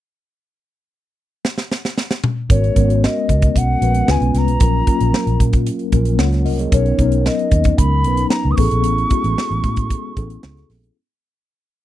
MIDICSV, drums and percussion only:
0, 0, Header, 1, 2, 480
1, 0, Start_track
1, 0, Tempo, 529568
1, 342, Time_signature, 4, 2, 24, 8
1, 10736, End_track
2, 0, Start_track
2, 0, Title_t, "Drums"
2, 1312, Note_on_c, 9, 38, 72
2, 1403, Note_off_c, 9, 38, 0
2, 1429, Note_on_c, 9, 38, 65
2, 1520, Note_off_c, 9, 38, 0
2, 1554, Note_on_c, 9, 38, 71
2, 1645, Note_off_c, 9, 38, 0
2, 1677, Note_on_c, 9, 38, 72
2, 1767, Note_off_c, 9, 38, 0
2, 1791, Note_on_c, 9, 38, 74
2, 1881, Note_off_c, 9, 38, 0
2, 1910, Note_on_c, 9, 38, 86
2, 2000, Note_off_c, 9, 38, 0
2, 2027, Note_on_c, 9, 45, 89
2, 2117, Note_off_c, 9, 45, 0
2, 2265, Note_on_c, 9, 36, 109
2, 2267, Note_on_c, 9, 42, 88
2, 2356, Note_off_c, 9, 36, 0
2, 2357, Note_off_c, 9, 42, 0
2, 2392, Note_on_c, 9, 42, 33
2, 2482, Note_off_c, 9, 42, 0
2, 2503, Note_on_c, 9, 42, 61
2, 2504, Note_on_c, 9, 36, 80
2, 2593, Note_off_c, 9, 42, 0
2, 2595, Note_off_c, 9, 36, 0
2, 2630, Note_on_c, 9, 42, 47
2, 2721, Note_off_c, 9, 42, 0
2, 2756, Note_on_c, 9, 38, 94
2, 2846, Note_off_c, 9, 38, 0
2, 2983, Note_on_c, 9, 36, 81
2, 2986, Note_on_c, 9, 42, 69
2, 3074, Note_off_c, 9, 36, 0
2, 3077, Note_off_c, 9, 42, 0
2, 3100, Note_on_c, 9, 42, 54
2, 3104, Note_on_c, 9, 36, 92
2, 3191, Note_off_c, 9, 42, 0
2, 3195, Note_off_c, 9, 36, 0
2, 3224, Note_on_c, 9, 36, 86
2, 3230, Note_on_c, 9, 42, 81
2, 3314, Note_off_c, 9, 36, 0
2, 3321, Note_off_c, 9, 42, 0
2, 3463, Note_on_c, 9, 42, 62
2, 3554, Note_off_c, 9, 42, 0
2, 3576, Note_on_c, 9, 42, 51
2, 3666, Note_off_c, 9, 42, 0
2, 3700, Note_on_c, 9, 38, 96
2, 3791, Note_off_c, 9, 38, 0
2, 3823, Note_on_c, 9, 42, 33
2, 3913, Note_off_c, 9, 42, 0
2, 3939, Note_on_c, 9, 42, 69
2, 3943, Note_on_c, 9, 38, 32
2, 4029, Note_off_c, 9, 42, 0
2, 4034, Note_off_c, 9, 38, 0
2, 4060, Note_on_c, 9, 42, 52
2, 4151, Note_off_c, 9, 42, 0
2, 4171, Note_on_c, 9, 42, 92
2, 4176, Note_on_c, 9, 36, 112
2, 4261, Note_off_c, 9, 42, 0
2, 4266, Note_off_c, 9, 36, 0
2, 4414, Note_on_c, 9, 42, 59
2, 4416, Note_on_c, 9, 36, 84
2, 4505, Note_off_c, 9, 42, 0
2, 4506, Note_off_c, 9, 36, 0
2, 4537, Note_on_c, 9, 42, 45
2, 4628, Note_off_c, 9, 42, 0
2, 4660, Note_on_c, 9, 38, 95
2, 4751, Note_off_c, 9, 38, 0
2, 4778, Note_on_c, 9, 42, 35
2, 4869, Note_off_c, 9, 42, 0
2, 4895, Note_on_c, 9, 36, 84
2, 4898, Note_on_c, 9, 42, 70
2, 4986, Note_off_c, 9, 36, 0
2, 4988, Note_off_c, 9, 42, 0
2, 5010, Note_on_c, 9, 42, 49
2, 5016, Note_on_c, 9, 36, 90
2, 5101, Note_off_c, 9, 42, 0
2, 5107, Note_off_c, 9, 36, 0
2, 5135, Note_on_c, 9, 42, 83
2, 5226, Note_off_c, 9, 42, 0
2, 5250, Note_on_c, 9, 42, 29
2, 5340, Note_off_c, 9, 42, 0
2, 5368, Note_on_c, 9, 42, 59
2, 5371, Note_on_c, 9, 36, 88
2, 5459, Note_off_c, 9, 42, 0
2, 5462, Note_off_c, 9, 36, 0
2, 5488, Note_on_c, 9, 42, 51
2, 5578, Note_off_c, 9, 42, 0
2, 5609, Note_on_c, 9, 38, 100
2, 5700, Note_off_c, 9, 38, 0
2, 5734, Note_on_c, 9, 42, 32
2, 5735, Note_on_c, 9, 38, 33
2, 5824, Note_off_c, 9, 42, 0
2, 5826, Note_off_c, 9, 38, 0
2, 5852, Note_on_c, 9, 46, 71
2, 5942, Note_off_c, 9, 46, 0
2, 5975, Note_on_c, 9, 42, 46
2, 6065, Note_off_c, 9, 42, 0
2, 6092, Note_on_c, 9, 42, 89
2, 6093, Note_on_c, 9, 36, 109
2, 6182, Note_off_c, 9, 42, 0
2, 6184, Note_off_c, 9, 36, 0
2, 6216, Note_on_c, 9, 42, 31
2, 6306, Note_off_c, 9, 42, 0
2, 6332, Note_on_c, 9, 42, 60
2, 6333, Note_on_c, 9, 36, 86
2, 6423, Note_off_c, 9, 42, 0
2, 6424, Note_off_c, 9, 36, 0
2, 6452, Note_on_c, 9, 42, 49
2, 6543, Note_off_c, 9, 42, 0
2, 6579, Note_on_c, 9, 38, 88
2, 6669, Note_off_c, 9, 38, 0
2, 6699, Note_on_c, 9, 42, 32
2, 6790, Note_off_c, 9, 42, 0
2, 6811, Note_on_c, 9, 42, 71
2, 6813, Note_on_c, 9, 36, 87
2, 6901, Note_off_c, 9, 42, 0
2, 6904, Note_off_c, 9, 36, 0
2, 6924, Note_on_c, 9, 42, 57
2, 6935, Note_on_c, 9, 36, 91
2, 7015, Note_off_c, 9, 42, 0
2, 7026, Note_off_c, 9, 36, 0
2, 7055, Note_on_c, 9, 36, 92
2, 7056, Note_on_c, 9, 42, 88
2, 7146, Note_off_c, 9, 36, 0
2, 7147, Note_off_c, 9, 42, 0
2, 7291, Note_on_c, 9, 42, 62
2, 7381, Note_off_c, 9, 42, 0
2, 7408, Note_on_c, 9, 42, 51
2, 7499, Note_off_c, 9, 42, 0
2, 7527, Note_on_c, 9, 38, 104
2, 7618, Note_off_c, 9, 38, 0
2, 7770, Note_on_c, 9, 46, 68
2, 7774, Note_on_c, 9, 36, 95
2, 7861, Note_off_c, 9, 46, 0
2, 7864, Note_off_c, 9, 36, 0
2, 7897, Note_on_c, 9, 42, 49
2, 7988, Note_off_c, 9, 42, 0
2, 8010, Note_on_c, 9, 42, 96
2, 8101, Note_off_c, 9, 42, 0
2, 8141, Note_on_c, 9, 42, 32
2, 8232, Note_off_c, 9, 42, 0
2, 8251, Note_on_c, 9, 42, 59
2, 8255, Note_on_c, 9, 36, 84
2, 8341, Note_off_c, 9, 42, 0
2, 8346, Note_off_c, 9, 36, 0
2, 8377, Note_on_c, 9, 42, 49
2, 8468, Note_off_c, 9, 42, 0
2, 8504, Note_on_c, 9, 38, 97
2, 8595, Note_off_c, 9, 38, 0
2, 8622, Note_on_c, 9, 42, 34
2, 8712, Note_off_c, 9, 42, 0
2, 8734, Note_on_c, 9, 42, 71
2, 8735, Note_on_c, 9, 36, 90
2, 8824, Note_off_c, 9, 42, 0
2, 8826, Note_off_c, 9, 36, 0
2, 8851, Note_on_c, 9, 42, 54
2, 8857, Note_on_c, 9, 36, 86
2, 8941, Note_off_c, 9, 42, 0
2, 8948, Note_off_c, 9, 36, 0
2, 8977, Note_on_c, 9, 36, 91
2, 8978, Note_on_c, 9, 42, 84
2, 9068, Note_off_c, 9, 36, 0
2, 9069, Note_off_c, 9, 42, 0
2, 9216, Note_on_c, 9, 36, 85
2, 9218, Note_on_c, 9, 42, 58
2, 9307, Note_off_c, 9, 36, 0
2, 9309, Note_off_c, 9, 42, 0
2, 9337, Note_on_c, 9, 42, 50
2, 9428, Note_off_c, 9, 42, 0
2, 9456, Note_on_c, 9, 38, 106
2, 9546, Note_off_c, 9, 38, 0
2, 9582, Note_on_c, 9, 42, 34
2, 9584, Note_on_c, 9, 38, 32
2, 9673, Note_off_c, 9, 42, 0
2, 9674, Note_off_c, 9, 38, 0
2, 9696, Note_on_c, 9, 46, 70
2, 9700, Note_on_c, 9, 38, 31
2, 9787, Note_off_c, 9, 46, 0
2, 9791, Note_off_c, 9, 38, 0
2, 9822, Note_on_c, 9, 42, 46
2, 9913, Note_off_c, 9, 42, 0
2, 10736, End_track
0, 0, End_of_file